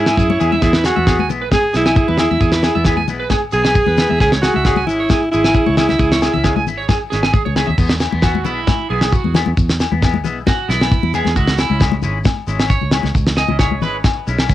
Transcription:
Already playing: G#2 E4
0.06 C#4 E4 G#4 G#5, snare, low agogo
0.17 F#2 G#4, kick, shekere
0.30 C#5, high conga
0.39 E2 G#3 C#4 E4 G#4, low conga, low agogo, shekere
0.52 E5, high conga
0.62 E2 G#3 B3 E4 G#4, kick, snare, shekere
0.73 B4, snare
0.84 F#4 G#4, snare, low agogo, shekere
0.95 E2 B3 E4 E5, high conga
1.06 G#3 B3 E4 G#4, kick, snare, low agogo, shekere
1.19 G#5, high conga
1.28 B1 G#3 B3 E4, low conga, shekere
1.42 B4
1.51 G#4, kick, snare, high conga, low agogo, shekere
1.73 B1 G#3 B3 E4 G#4, snare, shekere
1.85 E4 G#5, muted clean electric guitar stroke, snare, low agogo
1.96 G#4, kick, shekere
2.08 E2 B4, high conga
2.17 E4 G#4, snare, low conga, low agogo, shekere
2.31 E2 E5, high conga
2.41 E2 G#4, kick, shekere
2.52 B4, snare
2.63 G#4, snare, low agogo, shekere
2.75 E2 B3 E4 E5, high conga
2.85 G#3 B3 E4 G#4, kick, snare, low agogo, shekere
2.97 G#5, high conga
3.08 B1 G#3 B3 E4, low conga, shekere
3.20 B4
3.30 G#4, kick, snare, high conga, low agogo, shekere
3.52 B1 G#3 B3 E4 G#4, shekere
3.64 B3 E4 G#5, snare, low agogo
3.75 G#4, kick, shekere
3.87 E2 B4, high conga
3.97 G#3 B3 E4 B4, snare, low conga, low agogo, shekere
4.09 E2 E5, high conga
4.20 C#2 G#3 C#4 E4 G#4, kick, snare, shekere
4.32 C#5, snare
4.42 F#4 G#4, snare, low agogo, shekere
4.54 C#2 E4 E5, high conga
4.65 G#3 C#4 E4 G#4, kick, snare, low agogo, shekere
4.76 G#5, high conga
4.86 G#1 G#3 C#4 E4, low conga, shekere
5.00 C#5
5.09 G#4, kick, snare, high conga, low agogo, shekere
5.31 G#1 G#3 E4 G#4, shekere
5.44 C#4 E4 G#5, snare, low agogo
5.54 G#4, kick, shekere
5.66 C#2 C#5, high conga
5.77 G#3 C#4 E4 G#4, snare, low conga, low agogo, shekere
5.89 C#2 E5, snare, high conga
5.99 C#2 G#4, kick, shekere
6.11 C#5, snare
6.22 G#4, snare, low agogo, shekere
6.33 C#2 C#4 E4 E5, low conga
6.43 G#3 C#4 G#4, kick, snare, low agogo, shekere
6.56 G#5, high conga
6.67 G#1 E4, low conga, shekere
6.77 C#5
6.88 G#4, kick, snare, high conga, low agogo, shekere
7.10 G#1 G#3 C#4 E4 G#4, snare, shekere
7.23 E4 G#5, muted clean electric guitar stroke, snare, low agogo
7.33 G#4, kick, high conga, shekere
7.45 C#2 C#5, high conga
7.56 G#3 C#4 E4 G#4, snare, low conga, low agogo
7.67 D#2 E5, low conga
7.78 E2 G#3 B3, muted clean electric guitar stroke, kick, crash, shekere
7.89 snare
8.00 snare, low agogo, shekere
8.11 E2 B3 E4, high conga
8.22 B3 E4 F#4, muted clean electric guitar stroke, kick, snare, low agogo, shekere
8.35 high conga
8.45 B1 G#3 B3 E4, low conga, shekere
8.67 kick, snare, high conga, low agogo, shekere
8.90 B1 G#3 B3 E4 G#4
9.01 B3 E4, snare, low agogo
9.12 F#4, kick, shekere
9.24 E2, high conga
9.34 G#3 B3 E4, snare, low conga, low agogo, shekere
9.46 E2, high conga
9.57 E2, kick, shekere
9.69 snare
9.80 snare, low agogo, shekere
9.91 E2 B3 E4, high conga
10.02 G#3 B3 E4, kick, snare, low agogo, shekere
10.14 high conga
10.24 B1 G#3 B3 E4, low conga, shekere
10.46 F#4, kick, snare, high conga, low agogo, shekere
10.68 B1 G#3 B3 E4, snare, shekere
10.81 B3, snare, low agogo
10.92 kick, shekere
11.03 E2, high conga
11.14 G#3 B3 E4 G#4, low conga, low agogo, shekere
11.25 E2, snare, high conga
11.36 C#2 G#3 E4 F#4, muted clean electric guitar stroke, kick, shekere
11.47 snare
11.58 E4, snare, low agogo, shekere
11.69 C#2 C#4 E4, high conga
11.79 G#3 C#4 E4, kick, snare, low agogo, shekere
11.92 high conga
12.02 G#1 G#3 C#4 E4, low conga, shekere
12.24 kick, snare, high conga, low agogo, shekere
12.47 G#1 G#3 C#4 E4, shekere
12.59 C#4 E4, snare, low agogo
12.70 C#5, kick, shekere
12.81 C#2, high conga
12.91 G#3 C#4 E4, snare, low conga, low agogo, shekere
13.03 C#2, snare, high conga
13.15 C#2, kick, shekere
13.27 snare
13.37 D#5, snare, low agogo, shekere
13.48 C#2 C#4 E4, high conga, low conga
13.59 G#3 C#4 E4 C#5, kick, snare, low agogo, shekere
13.71 high conga
13.82 G#1 G#3 C#4 E4 B4, low conga, shekere
14.04 kick, snare, low agogo, shekere
14.27 B1 G#3 C#4 E4, shekere
14.38 C#4 E4, snare, low agogo
14.50 C#2, kick, shekere

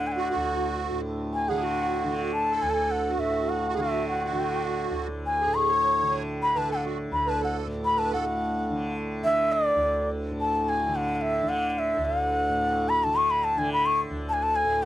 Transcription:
Already playing: D2 A2 D3
0.07 G#5
0.12 F#5
0.17 F#4
0.30 F#4
0.35 D2
0.91 A2
1.34 G#5
1.48 D3 G#4 F#5
1.62 F#4
2.04 D3
2.33 A5
2.51 A4
2.62 D2 G#5
2.70 G#5 A5
2.91 F#5
3.09 F#4
3.18 A2 E5
3.49 F#5
3.68 F#4
3.74 D3 G#4
3.80 F#4 E5
4.09 F#5
4.24 F#4
4.32 D3
4.91 D2
5.26 G#5
5.41 G#4
5.47 A2
5.55 C#6
5.69 C#5
6.02 D3
6.42 B5
6.55 D3 B4 A5
6.70 A4 F#5
6.85 F#4
7.11 D2 B5
7.26 B4 A5
7.41 A4 F#5
7.67 A2
7.85 B5
7.97 B4 A5
8.11 A2 A4 F#5
8.70 D3
9.23 D3 E5
9.52 D5
9.76 D2
10.32 A2
10.41 A5
10.69 G#5
10.87 D3
10.96 F#5
11.15 F#5
11.22 E5
11.42 D3
11.49 F#5
11.70 F#5
11.79 E5
11.98 D2
12.05 F#5
12.49 A2
12.89 B5
13.04 D3 A5
13.16 C#6
13.31 B5
13.44 A5
13.57 D3 G#5
13.73 B5
13.86 C#6
14.10 D2
14.29 A5
14.33 G#5
14.43 A5
14.56 G#5
14.65 A2

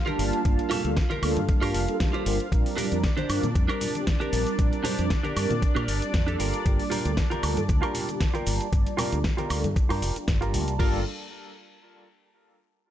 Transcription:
Already playing: F4 F5
0.06 G3 A#3 D4 F4 G4 A#4 A5, closed hi-hat, high conga
0.19 G1, open hi-hat
0.33 closed hi-hat
0.44 G1 G3 A#3 D4 F4 A5, kick, closed hi-hat
0.59 closed hi-hat
0.70 F4 G4 A4, open hi-hat, low conga, high woodblock
0.84 D2 G3 A#3 D4 F4 A4, closed hi-hat
0.97 kick, snare, closed hi-hat
1.10 F4 G4 A#4, closed hi-hat, high conga
1.22 D2 G3 A#3 D4 F4 A4, open hi-hat, high woodblock
1.36 G2, closed hi-hat, high conga
1.48 G3 A#3 D4 F4 A5, kick, closed hi-hat
1.61 G2 F4 G4 A#4, open hi-hat, high woodblock
1.74 F1, open hi-hat
1.88 G3 A#3 D4 F4 A4, closed hi-hat
1.99 G3 A#3 D4 F4 A4, kick, snare, closed hi-hat
2.13 F4 G4 C5, closed hi-hat
2.25 G1 G3 A#3 D4 F4 A#4, open hi-hat
2.40 closed hi-hat
2.51 A#1 G3 C4 D4 F4 A#4 D5, kick, closed hi-hat, shaker
2.66 open hi-hat, shaker
2.77 D4 G4 A#4, open hi-hat, low conga, shaker
2.91 F2 G3 C4 D4 F4 A#4, closed hi-hat, shaker
3.04 kick, snare, closed hi-hat, shaker
3.17 D4 G4 C5, closed hi-hat, high conga, shaker
3.29 G2 G3 C4 D4 F4 A#4, open hi-hat, high woodblock, shaker
3.43 A#2, closed hi-hat, high conga, shaker
3.55 F2 G3 C4 D4 F4 A#4, kick, closed hi-hat, shaker
3.68 D4 G4 A#4, closed hi-hat, high woodblock, shaker
3.81 open hi-hat, low conga, shaker
3.94 G3 C4 D4 F4 G4, closed hi-hat, high conga, shaker
4.07 kick, snare, closed hi-hat, shaker
4.20 G3 C4 D4 F4 G4 A#4, closed hi-hat, high conga, shaker
4.33 A#1, open hi-hat, shaker
4.47 closed hi-hat, shaker
4.58 A#1 G3 C4 D4 F4 A#4, kick, closed hi-hat, shaker
4.73 closed hi-hat, shaker
4.84 D4 G4 C5, open hi-hat, low conga, shaker
4.98 F2 G3 C4 D4 F4 A#4, closed hi-hat, shaker
5.10 kick, snare, closed hi-hat, shaker
5.23 D4 G4 A#4, closed hi-hat, high conga, shaker
5.36 G2 G3 C4 D4 F4 A#4, open hi-hat, high woodblock, shaker
5.50 A#2, closed hi-hat, high conga, shaker
5.62 G3 C4 D4 F4 A#4, kick, closed hi-hat, shaker
5.75 A#2 D4 G4 A#4, closed hi-hat, high woodblock, shaker
5.88 G1, open hi-hat, shaker
6.02 G3 C4 D4 F4 G4, muted fingered electric bass stroke, closed hi-hat, shaker
6.14 F2, kick, snare, closed hi-hat, shaker
6.26 G3 A#3 D4 F4 G4 A4, closed hi-hat, shaker
6.38 G1 F4 G4 A#4, open hi-hat, shaker
6.54 closed hi-hat, shaker
6.65 G1 G3 A#3 D4 F4 A5, kick, closed hi-hat, shaker
6.79 open hi-hat, shaker
6.90 F4 G4 A#4, open hi-hat, low conga, shaker
7.05 D2 G3 A#3 D4 F4 A4, closed hi-hat, shaker
7.17 kick, snare, closed hi-hat, shaker
7.30 F4 G4 A#4, closed hi-hat, high conga, shaker
7.43 D2 G3 A#3 D4 F4 A4, open hi-hat, high woodblock, shaker
7.57 G2, closed hi-hat, high conga, shaker
7.69 D2 G3 A#3 D4 F4 A5, kick, closed hi-hat, shaker
7.82 F4 G4 A#4, closed hi-hat, high woodblock, shaker
7.95 open hi-hat, low conga, shaker
8.08 G3 A#3 D4 F4 G4, closed hi-hat, high conga, shaker
8.20 kick, snare, closed hi-hat, shaker
8.34 G3 A#3 D4 F4 G4 A#4 A5, closed hi-hat, high conga, shaker
8.47 G1, open hi-hat, shaker
8.61 closed hi-hat, shaker
8.72 G1 G3 A#3 D4 F4 A5, kick, closed hi-hat, shaker
8.86 closed hi-hat, shaker
8.97 F4 G4 A#4, open hi-hat, low conga, high woodblock, shaker
9.12 D2 G3 A#3 D4 F4 A4, closed hi-hat, shaker
9.24 kick, snare, closed hi-hat, shaker
9.37 F4 G4 A#4, closed hi-hat, high conga, shaker
9.50 D2 G3 A#3 D4 F4 A4, open hi-hat, high woodblock, shaker
9.64 G2, closed hi-hat, high conga, shaker
9.76 G3 A#3 D4 F4 A5, kick, closed hi-hat, shaker
9.89 G2 F4 G4 A#4, open hi-hat, high woodblock, shaker
10.02 F1, open hi-hat, shaker
10.15 G3 A#3 D4 F4 G4, muted fingered electric bass stroke, closed hi-hat, shaker
10.28 G1, kick, snare, closed hi-hat, shaker
10.41 G3 A#3 D4 F4 G4 A#4 A5, closed hi-hat, shaker
10.54 D2, open hi-hat, shaker
10.67 C2, closed hi-hat, shaker
10.78 G1 G3 A#3 D4 F4 G4 A4 A#4, kick, crash

